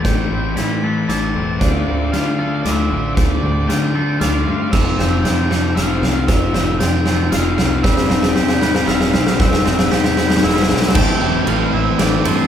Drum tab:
CC |------------------------|------------------------|------------------------|x-----------------------|
RD |------------------------|------------------------|------------------------|------------------------|
HH |x-------x-------x-------|x-------x-------x-------|x-------x-------x-------|--------x-------x-------|
SD |o-------o-------o-------|o-------o-------o-------|o-------o-------o-------|o---o---o---o---o---o---|
BD |o-----------------------|o-----------------------|o-----------------------|o-----------------------|

CC |------------------------|------------------------|------------------------|x-----------------------|
RD |------------------------|------------------------|------------------------|--------x-------x---x---|
HH |x-------x-------x-------|------------------------|------------------------|------------------------|
SD |o---o---o---o---o---o---|o-o-o-o-o-o-o-o-o-o-o-o-|o-o-o-o-o-o-o-oooooooooo|----------------o-------|
BD |o-----------------------|o-----------------------|o-----------------------|o-----------------------|